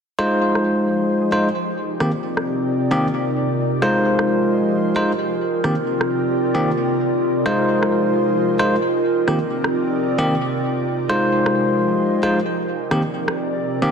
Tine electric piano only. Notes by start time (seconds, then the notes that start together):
0.19 G#3 D#4 F4 C5
1.32 G#3 D#4 F4 C5
2.00 D#3 A#3 C4 G4
2.91 D#3 A#3 C4 G4
3.82 G#3 D#4 F4 C5
4.96 G#3 D#4 F4 C5
5.64 D#3 A#3 C4 G4
6.55 D#3 A#3 C4 G4
7.46 G#3 D#4 F4 C5
8.59 G#3 D#4 F4 C5
9.28 D#3 A#3 C4 G4
10.19 D#3 A#3 C4 G4
11.09 G#3 D#4 F4 C5
12.23 G#3 D#4 F4 C5
12.91 D#3 A#3 C4 G4
13.82 D#3 A#3 C4 G4